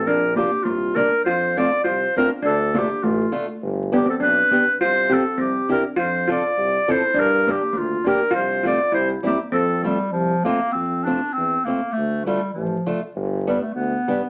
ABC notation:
X:1
M:2/4
L:1/16
Q:"Swing" 1/4=101
K:Bb
V:1 name="Clarinet"
B2 G2 F2 B2 | [K:F] c2 d2 c2 B2 | A2 G2 F3 z | z2 G A =B4 |
c2 A2 G2 B2 | c2 d4 c2 | B2 G2 F2 B2 | c2 d2 c2 G2 |
A2 G,2 F,2 B,2 | C2 D2 C2 B,2 | A,2 G,2 F,3 z | z2 G, A, =B,4 |]
V:2 name="Steel pan"
D2 B,2 B,2 D2 | [K:F] F2 F2 F2 D2 | D2 B,2 A,3 z | z2 =B, C D4 |
F2 C2 C2 D2 | F2 F4 E2 | D2 B,2 B,2 D2 | F2 F2 E2 B,2 |
C6 z2 | z8 | z8 | z8 |]
V:3 name="Steel-string acoustic guitar"
z2 [B,DF]2 z2 [B,DF]2 | [K:F] z2 [A,CF]2 z2 [A,CF]2 | z2 [A,DF]2 z2 [A,DF]2 | z2 [=B,DG]2 z2 [B,DG]2 |
z2 [CFG]2 z2 [CEG]2 | z2 [CFA]2 z2 [CFA]2 | z2 [B,DG]2 z2 [B,DG]2 | z2 [A,CF]2 z2 [G,CE]2 |
z2 [A,CF]2 z2 [A,CF]2 | z2 [A,CF]2 z2 [A,CF]2 | z2 [A,DF]2 z2 [A,DF]2 | z2 [G,=B,D]2 z2 [G,B,D]2 |]
V:4 name="Tuba" clef=bass
B,,,4 C,,4 | [K:F] F,,4 C,,2 z2 | D,,4 A,,,2 z2 | G,,,4 =B,,,2 z2 |
C,,4 C,,2 z2 | F,,4 C,,2 z2 | G,,4 D,,2 z2 | C,,4 C,,2 z2 |
F,,4 C,,2 z2 | F,,4 E,,2 z2 | D,,4 A,,,2 z2 | G,,,4 D,,2 z2 |]